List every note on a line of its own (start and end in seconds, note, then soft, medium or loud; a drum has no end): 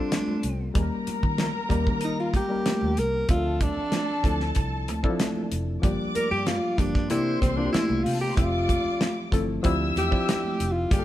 0.00 0.74 G3 medium
0.00 0.77 C4 medium
0.00 0.71 D4 medium
0.00 0.77 D4 medium
0.00 0.77 F4 medium
0.00 0.77 A4 medium
0.00 0.40 C5 medium
0.00 0.39 C6 medium
0.12 snare loud
0.12 closed hi-hat medium
0.12 high conga medium
0.28 high conga medium
0.43 0.69 C2 medium
0.43 closed hi-hat medium
0.74 0.88 D#2 loud
0.74 1.47 G3 medium
0.74 1.48 A#3 medium
0.74 1.48 C#4 medium
0.74 1.48 D#4 medium
0.74 0.82 G#4 medium
0.74 2.93 A#4 medium
0.74 2.93 A#5 medium
0.74 kick loud
0.74 closed hi-hat medium
0.83 1.52 A#4 medium
1.07 muted fingered electric bass stroke soft
1.07 closed hi-hat medium
1.07 muted conga soft
1.23 1.48 D#3 medium
1.23 kick medium
1.38 snare loud
1.38 closed hi-hat medium
1.38 high conga medium
1.69 1.89 D#2 medium
1.69 2.30 G3 medium
1.69 2.31 A#3 medium
1.69 2.31 C#4 medium
1.69 2.31 D#4 medium
1.69 2.32 A#4 medium
1.69 kick medium
1.69 closed hi-hat medium
1.69 low conga medium
1.87 2.38 D#3 medium
1.87 kick medium
2.01 2.18 D#4 medium
2.01 closed hi-hat medium
2.20 2.34 F4 medium
2.34 3.00 G4 loud
2.34 kick medium
2.34 closed hi-hat medium
2.34 muted conga soft
2.49 3.10 G3 medium
2.49 3.10 A#3 medium
2.49 3.10 C#4 medium
2.49 3.10 D#4 medium
2.49 3.11 A#4 medium
2.66 snare loud
2.66 closed hi-hat loud
2.66 high conga medium
2.81 2.95 D#2 medium
2.81 high conga medium
2.97 3.23 C2 medium
2.97 3.30 A#4 medium
2.97 closed hi-hat medium
3.28 3.67 D2 loud
3.28 4.01 F3 medium
3.28 4.02 C4 medium
3.28 4.02 D4 medium
3.28 3.64 F4 medium
3.28 3.36 G4 medium
3.28 5.47 A4 medium
3.28 4.02 E5 medium
3.28 5.47 A5 loud
3.28 kick loud
3.28 closed hi-hat medium
3.37 4.06 A4 medium
3.61 4.57 D4 medium
3.61 kick medium
3.61 closed hi-hat medium
3.61 muted conga medium
3.77 muted fingered electric bass stroke soft
3.92 snare medium
3.92 closed hi-hat medium
3.92 high conga medium
4.24 4.50 D2 medium
4.24 4.85 F3 medium
4.24 4.85 C4 medium
4.24 4.85 D4 medium
4.24 4.85 E4 medium
4.24 4.86 A4 medium
4.24 kick medium
4.24 closed hi-hat medium
4.24 low conga medium
4.40 snare soft
4.55 4.88 C2 medium
4.55 kick medium
4.55 closed hi-hat medium
4.55 muted conga soft
4.88 5.01 D2 medium
4.88 closed hi-hat medium
4.88 muted conga soft
5.03 5.10 E3 medium
5.03 5.64 C4 medium
5.03 5.64 D4 medium
5.03 5.65 E4 medium
5.03 5.65 A4 medium
5.03 kick medium
5.09 5.67 F3 medium
5.20 snare loud
5.20 closed hi-hat medium
5.20 high conga medium
5.36 high conga medium
5.51 5.77 F1 medium
5.51 closed hi-hat medium
5.82 5.96 G1 loud
5.82 6.55 F3 medium
5.82 6.56 G3 medium
5.82 6.56 A#3 medium
5.82 6.56 D4 medium
5.82 6.56 G4 loud
5.82 6.76 D5 medium
5.82 6.76 D6 medium
5.82 kick loud
5.82 closed hi-hat medium
6.15 6.30 A#4 medium
6.15 muted fingered electric bass stroke soft
6.15 closed hi-hat medium
6.15 muted conga soft
6.31 6.57 G2 medium
6.31 6.49 G4 medium
6.46 6.80 F4 medium
6.46 snare medium
6.46 closed hi-hat medium
6.46 high conga medium
6.78 6.91 G1 medium
6.78 7.10 F3 medium
6.78 7.10 G3 medium
6.78 7.09 A#3 medium
6.78 7.10 D4 medium
6.78 7.10 G4 medium
6.78 kick medium
6.78 closed hi-hat medium
6.78 low conga medium
6.95 7.10 G2 medium
6.95 kick medium
6.95 snare soft
7.09 7.36 C3 medium
7.09 7.48 E3 medium
7.09 7.48 A#3 medium
7.09 7.49 C4 medium
7.09 7.49 D4 medium
7.09 7.40 E4 medium
7.09 7.49 G4 medium
7.09 7.82 C5 medium
7.09 7.82 C6 medium
7.09 closed hi-hat medium
7.09 muted conga soft
7.41 7.68 C2 medium
7.41 7.58 C4 medium
7.41 kick medium
7.41 closed hi-hat medium
7.41 muted conga soft
7.41 low conga medium
7.57 8.18 E3 medium
7.57 8.18 A#3 medium
7.57 8.19 C4 medium
7.57 7.72 D4 medium
7.57 8.19 D4 medium
7.57 7.65 F4 medium
7.66 8.22 G4 medium
7.73 8.05 E4 medium
7.73 muted fingered electric bass stroke soft
7.73 snare loud
7.73 closed hi-hat medium
7.73 high conga medium
7.89 8.03 C2 medium
7.89 7.98 E4 medium
7.89 7.98 E5 medium
7.89 high conga medium
7.97 8.05 F4 medium
7.97 8.05 F5 medium
8.04 8.31 C3 medium
8.04 8.20 F4 medium
8.04 8.13 G4 medium
8.04 8.13 G5 medium
8.04 open hi-hat medium
8.13 8.21 A4 medium
8.13 8.21 A5 medium
8.20 8.36 G4 medium
8.20 8.29 A#4 medium
8.20 8.29 A#5 medium
8.20 high conga soft
8.29 8.37 C5 medium
8.29 8.37 C6 medium
8.36 8.75 F1 loud
8.36 9.10 F3 medium
8.36 9.10 A3 medium
8.36 9.10 C4 medium
8.36 9.28 F4 medium
8.36 9.11 G4 medium
8.36 9.30 D5 medium
8.36 9.10 E5 medium
8.36 9.30 D6 medium
8.36 kick loud
8.36 closed hi-hat medium
8.69 kick medium
8.69 closed hi-hat medium
8.69 muted conga medium
8.85 muted fingered electric bass stroke soft
9.01 snare loud
9.01 closed hi-hat medium
9.01 high conga medium
9.31 9.58 G1 medium
9.31 9.62 F3 medium
9.31 9.64 A3 medium
9.31 9.63 C4 medium
9.31 9.64 E4 medium
9.31 9.65 A4 medium
9.31 kick medium
9.31 closed hi-hat medium
9.31 low conga medium
9.63 9.90 D2 medium
9.63 10.02 F3 medium
9.63 10.02 C4 medium
9.63 10.02 D4 medium
9.63 10.03 E4 medium
9.63 10.03 G4 loud
9.63 10.58 E5 medium
9.63 10.57 E6 loud
9.63 kick medium
9.63 closed hi-hat medium
9.63 muted conga soft
9.96 10.09 E2 medium
9.96 10.73 G4 medium
9.96 closed hi-hat medium
9.96 muted conga soft
10.11 10.72 F3 medium
10.11 10.72 C4 medium
10.11 10.72 D4 medium
10.11 10.73 E4 medium
10.11 10.73 G4 medium
10.11 kick medium
10.28 snare loud
10.28 closed hi-hat medium
10.28 high conga medium
10.44 high conga medium
10.60 10.85 F1 medium
10.60 closed hi-hat medium
10.72 10.92 F4 medium
10.91 11.04 G1 medium
10.91 11.05 G3 medium
10.91 11.05 A#3 medium
10.91 11.05 D4 medium
10.91 11.05 F4 medium
10.91 11.05 G4 medium
10.91 10.99 G#4 medium
10.91 11.05 F5 medium
10.91 11.05 F6 medium
10.91 kick loud
10.91 closed hi-hat medium
10.99 11.05 A4 medium